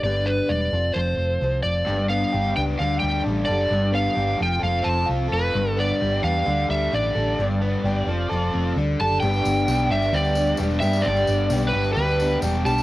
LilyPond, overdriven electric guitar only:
\new Staff \with { instrumentName = "Overdriven electric guitar" } { \time 4/4 \key g \mixolydian \tempo 4 = 131 r1 | g,8 b8 g'8 d'8 d8 g8 d'8 a'8 | g,8 b8 g'8 f8 a'8 c'8 f'8 a'8 | g,8 b8 g'8 d'8 d8 g8 d'8 a'8 |
g,8 b8 g'8 f8 a'8 c'8 d8 a'8 | \key g \major <g, d g b d' g'>4 <g b d' g'>8 <g b d' g'>8 <g, d g b d' g'>4 <g b d' g'>8 <g b d' g'>8 | <g, d g b d' g'>4 <g b d' g'>8 <g b d' g'>8 <g, d g b d' g'>4 <g b d' g'>8 <g b d' g'>8 | }